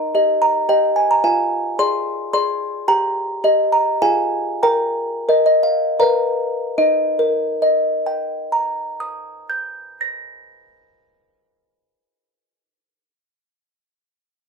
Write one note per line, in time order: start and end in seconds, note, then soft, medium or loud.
0.00 0.13 D#4 soft
0.00 0.13 D#5 soft
0.00 0.39 A#5 medium
0.15 0.66 G4 soft
0.15 0.66 D#5 soft
0.42 0.68 A#5 medium
0.69 1.20 G4 soft
0.69 1.20 D#5 soft
0.69 0.95 G5 medium
0.96 1.10 G#5 medium
1.11 1.24 A#5 medium
1.24 1.77 F4 medium
1.24 1.77 F5 soft
1.24 1.77 G#5 medium
1.79 2.29 G#4 soft
1.79 2.30 D5 soft
1.79 2.31 C6 loud
2.33 2.84 G#4 soft
2.33 2.84 D5 soft
2.33 2.86 C6 medium
2.88 3.43 G4 medium
2.88 3.43 G5 medium
2.88 3.70 A#5 medium
3.44 3.98 G4 medium
3.44 3.98 D#5 medium
3.72 4.01 A#5 loud
4.02 4.61 F4 medium
4.02 4.59 G#4 soft
4.02 4.59 F5 medium
4.02 4.61 G#5 medium
4.63 5.27 A#4 medium
4.63 5.42 G5 medium
4.63 5.26 A#5 medium
5.29 5.96 A#4 soft
5.29 5.45 D#5 medium
5.46 5.63 D#5 medium
5.63 5.98 F5 medium
6.00 6.76 A#4 medium
6.00 6.74 B4 soft
6.00 6.75 D5 soft
6.00 6.75 F5 medium
6.00 6.76 A#5 soft
6.78 10.64 D#4 soft
6.78 7.61 D#5 medium
7.19 11.05 A#4 soft
7.62 11.48 D#5 medium
8.06 11.93 G5 soft
8.52 12.39 A#5 soft
9.00 12.86 D#6 soft
9.49 13.08 G6 soft
10.01 13.09 A#6 soft